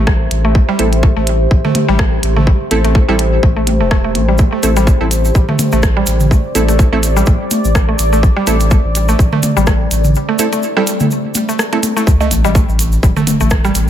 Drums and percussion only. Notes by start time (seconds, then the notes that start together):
0.07 kick, cross-stick
0.31 closed hi-hat
0.55 kick
0.79 closed hi-hat, high tom
0.93 closed hi-hat
1.03 kick
1.27 closed hi-hat
1.51 kick
1.65 mid tom
1.75 closed hi-hat, mid tom, high tom
1.99 kick, cross-stick
2.23 closed hi-hat
2.37 mid tom
2.47 kick
2.71 closed hi-hat, high tom
2.85 closed hi-hat
2.95 kick
3.19 closed hi-hat
3.43 kick
3.67 closed hi-hat, high tom
3.91 kick, cross-stick
4.15 closed hi-hat, high tom
4.38 kick, cabasa
4.63 closed hi-hat, high tom, cabasa
4.76 closed hi-hat, cabasa
4.87 kick, cabasa
5.11 closed hi-hat, cabasa
5.25 cabasa
5.35 kick, cabasa
5.49 mid tom
5.59 closed hi-hat, mid tom, high tom, cabasa
5.72 cabasa
5.83 kick, cross-stick, cabasa
6.06 closed hi-hat, cabasa
6.20 mid tom, cabasa
6.31 kick, cabasa
6.55 closed hi-hat, high tom, cabasa
6.69 closed hi-hat, cabasa
6.79 kick, cabasa
7.03 closed hi-hat, cabasa
7.17 cabasa
7.26 kick, cabasa
7.51 closed hi-hat, high tom, cabasa
7.65 cabasa
7.75 kick, cross-stick, cabasa
7.99 closed hi-hat, cabasa
8.13 cabasa
8.23 kick, cabasa
8.47 closed hi-hat, high tom, cabasa
8.60 closed hi-hat, cabasa
8.71 kick, cabasa
8.95 closed hi-hat, cabasa
9.09 cabasa
9.19 kick, cabasa
9.32 mid tom
9.43 closed hi-hat, mid tom, high tom, cabasa
9.57 cabasa
9.67 kick, cross-stick, cabasa
9.91 closed hi-hat, cabasa
10.04 mid tom, cabasa
10.15 cabasa
10.39 closed hi-hat, high tom, cabasa
10.53 closed hi-hat, cabasa
10.63 cabasa
10.87 closed hi-hat, cabasa
11.00 mid tom, high tom, cabasa
11.11 cabasa
11.35 closed hi-hat, high tom, cabasa
11.49 cabasa
11.59 cross-stick, cabasa
11.73 closed hi-hat
11.83 closed hi-hat, high tom, cabasa
11.97 cabasa
12.07 kick, cabasa
12.21 high bongo, cabasa
12.31 closed hi-hat, high tom, cabasa
12.45 high bongo, cabasa
12.55 kick, cabasa
12.69 cabasa
12.79 closed hi-hat, cabasa
12.92 cabasa
13.03 kick, cabasa
13.16 mid tom, cabasa
13.27 closed hi-hat, mid tom, high tom, cabasa
13.40 cabasa
13.50 kick, cross-stick, cabasa
13.65 cabasa
13.75 closed hi-hat, cabasa